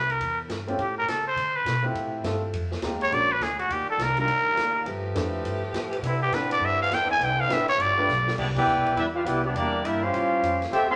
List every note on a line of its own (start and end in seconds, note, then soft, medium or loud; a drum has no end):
0.00 0.19 C2 medium
0.00 0.13 B4 loud
0.10 0.39 A#4 medium
0.10 ride soft
0.20 0.48 E2 medium
0.20 ride medium
0.49 0.77 G2 medium
0.49 snare medium
0.49 hi-hat pedal medium
0.49 ride medium
0.67 0.77 A3 medium
0.67 0.78 C4 medium
0.67 0.78 C#4 medium
0.67 0.78 F4 medium
0.67 0.78 G4 medium
0.67 ride soft
0.78 1.06 A2 loud
0.78 0.97 G4 medium
0.78 ride medium
0.98 1.11 A#4 loud
1.07 1.35 C#3 medium
1.07 1.27 A4 medium
1.07 snare medium
1.07 hi-hat pedal medium
1.07 ride medium
1.27 1.58 C5 loud
1.36 1.65 D3 medium
1.36 ride medium
1.56 1.85 B4 medium
1.65 1.94 B2 medium
1.65 snare medium
1.65 hi-hat pedal medium
1.65 ride medium
1.83 2.21 A3 medium
1.83 2.22 C4 medium
1.83 2.22 E4 medium
1.83 2.22 F4 medium
1.83 2.22 G4 medium
1.94 2.23 A2 medium
1.94 ride medium
2.24 2.52 G2 loud
2.24 2.40 A3 medium
2.24 2.40 C4 medium
2.24 2.41 E4 medium
2.24 2.41 F4 medium
2.24 2.41 A4 medium
2.24 snare medium
2.24 hi-hat pedal medium
2.24 ride medium
2.53 2.81 F2 medium
2.53 ride medium
2.71 snare medium
2.82 3.10 D#2 loud
2.82 3.09 G#3 medium
2.82 3.10 C4 medium
2.82 3.11 D#4 medium
2.82 3.11 F4 medium
2.82 3.11 G4 medium
2.82 snare medium
2.82 hi-hat pedal medium
2.82 ride medium
3.01 3.15 C#5 loud
3.01 ride soft
3.11 3.39 A#1 loud
3.11 3.27 G#3 medium
3.11 3.28 C#4 medium
3.11 3.28 D4 medium
3.11 3.28 F#4 medium
3.11 3.28 A#4 medium
3.11 3.33 D5 loud
3.11 ride medium
3.32 3.44 B4 loud
3.40 3.69 D2 medium
3.40 3.59 G#4 medium
3.40 snare medium
3.40 hi-hat pedal medium
3.40 ride medium
3.59 3.74 F#4 medium
3.59 ride soft
3.68 3.86 D#2 medium
3.68 4.85 D#3 medium
3.68 4.85 G3 medium
3.68 4.84 D4 medium
3.68 4.85 F4 medium
3.68 3.89 G4 medium
3.68 ride medium
3.88 4.04 A4 medium
3.88 muted upright bass stroke soft
3.98 4.26 C2 loud
3.98 snare medium
3.98 hi-hat pedal medium
3.98 ride medium
4.03 4.19 A#4 medium
4.17 4.27 G3 medium
4.17 4.27 D4 medium
4.17 4.27 D#4 medium
4.17 4.27 F4 medium
4.17 4.28 A#4 medium
4.17 4.84 A#4 loud
4.17 ride soft
4.28 4.56 D2 loud
4.28 ride medium
4.57 4.85 D#2 medium
4.57 snare medium
4.57 hi-hat pedal medium
4.57 ride medium
4.85 5.14 G2 loud
4.85 6.02 F3 medium
4.85 6.01 A3 medium
4.85 6.02 G4 medium
4.85 8.34 B4 medium
4.85 ride medium
5.14 5.43 F2 medium
5.14 5.59 A3 medium
5.14 5.59 D4 medium
5.14 5.59 E4 medium
5.14 5.59 F4 medium
5.14 5.60 B4 medium
5.14 snare medium
5.14 hi-hat pedal medium
5.14 ride medium
5.43 5.72 G2 loud
5.43 ride medium
5.73 6.02 A2 medium
5.73 snare medium
5.73 hi-hat pedal medium
5.73 ride medium
5.93 ride medium
6.02 6.31 C3 medium
6.02 8.35 D3 medium
6.02 7.77 C4 medium
6.02 7.77 E4 medium
6.02 6.21 E4 medium
6.02 ride medium
6.22 6.36 G4 loud
6.31 6.60 A2 loud
6.31 6.76 C4 medium
6.31 6.76 D4 soft
6.31 6.76 E4 medium
6.31 6.77 G4 medium
6.31 6.77 B4 medium
6.31 6.51 B4 medium
6.31 snare medium
6.31 hi-hat pedal medium
6.31 ride medium
6.51 6.66 D5 loud
6.51 ride medium
6.60 6.89 G2 loud
6.65 6.82 E5 loud
6.82 6.96 F5 loud
6.90 7.19 E2 medium
6.90 snare medium
6.90 hi-hat pedal medium
6.90 ride medium
6.94 7.11 G5 loud
7.11 7.25 G#5 loud
7.19 7.48 C2 loud
7.19 ride medium
7.24 7.42 G5 medium
7.40 7.54 F5 loud
7.49 7.77 A1 loud
7.49 7.66 C4 medium
7.49 7.66 D4 medium
7.49 7.66 E4 medium
7.49 7.66 G4 medium
7.49 7.66 B4 medium
7.49 7.68 E5 medium
7.49 snare medium
7.49 hi-hat pedal medium
7.49 ride medium
7.68 7.83 C#5 loud
7.68 ride soft
7.78 8.07 G1 loud
7.78 8.37 G3 medium
7.78 8.37 F4 medium
7.78 8.33 D5 loud
7.78 ride medium
7.97 8.07 A3 medium
7.97 8.07 D4 medium
7.97 8.07 F4 medium
7.97 8.08 G4 medium
7.97 8.08 B4 medium
8.08 8.36 B1 loud
8.08 snare soft
8.08 hi-hat pedal medium
8.28 snare medium
8.38 8.65 C2 loud
8.38 8.46 G3 medium
8.38 8.46 B3 medium
8.38 8.47 B3 medium
8.38 8.46 D4 medium
8.38 8.46 E4 medium
8.38 8.46 G4 medium
8.38 8.46 D5 medium
8.38 kick medium
8.38 crash medium
8.56 8.94 B3 medium
8.56 8.94 E4 medium
8.56 8.94 G4 medium
8.56 8.94 B4 medium
8.56 8.94 D5 medium
8.56 8.94 G5 loud
8.56 kick loud
8.56 crash loud
8.66 8.76 D2 loud
8.66 hi-hat pedal medium
8.76 8.85 C2 medium
8.85 8.95 B1 medium
8.85 ride medium
8.95 9.24 E2 medium
8.95 9.04 G3 medium
8.95 9.04 B3 medium
8.95 9.04 D4 medium
8.95 9.04 E4 medium
8.95 9.05 G4 medium
8.95 9.04 B4 medium
8.95 9.05 E5 loud
8.95 ride medium
9.14 9.25 D4 medium
9.14 9.25 F4 medium
9.14 9.25 G4 medium
9.14 9.25 B4 medium
9.14 9.25 F5 medium
9.25 9.54 C2 loud
9.25 9.43 B3 medium
9.25 9.44 E4 medium
9.25 9.42 E4 medium
9.25 9.44 G4 medium
9.25 9.44 B4 medium
9.25 9.43 D5 medium
9.25 9.44 G5 loud
9.25 hi-hat pedal medium
9.25 ride medium
9.43 9.54 G3 medium
9.43 9.54 B3 medium
9.43 9.54 D4 medium
9.43 9.54 E4 medium
9.43 9.54 G4 medium
9.43 9.54 D5 medium
9.55 9.83 E2 loud
9.55 9.82 G3 medium
9.55 9.82 A#3 medium
9.55 9.82 D4 medium
9.55 9.82 E4 medium
9.55 9.82 G4 medium
9.55 9.82 D5 medium
9.55 ride medium
9.84 10.13 G2 loud
9.84 10.00 G3 medium
9.84 10.02 A#3 medium
9.84 10.02 D4 medium
9.84 10.03 E4 medium
9.84 10.01 G4 medium
9.84 10.02 A#4 medium
9.84 10.02 E5 loud
9.84 hi-hat pedal soft
9.84 ride medium
10.02 10.61 G3 medium
10.02 10.61 C#4 medium
10.02 10.61 F4 medium
10.02 10.61 G4 medium
10.02 10.61 C5 medium
10.02 10.61 F5 loud
10.13 10.42 A2 loud
10.13 ride medium
10.42 10.71 F2 medium
10.42 hi-hat pedal medium
10.42 ride medium
10.62 snare soft
10.62 ride medium
10.71 10.96 D2 loud
10.71 10.88 A3 medium
10.71 10.88 C4 loud
10.71 10.89 F4 medium
10.71 10.88 G4 loud
10.71 10.89 C5 medium
10.71 10.89 E5 loud
10.71 10.89 G5 loud
10.71 ride medium
10.89 10.96 F3 medium
10.89 10.96 A3 loud
10.89 10.96 C4 medium
10.89 10.96 A4 loud
10.89 10.96 E5 medium
10.89 10.96 F5 medium
10.89 10.96 C6 loud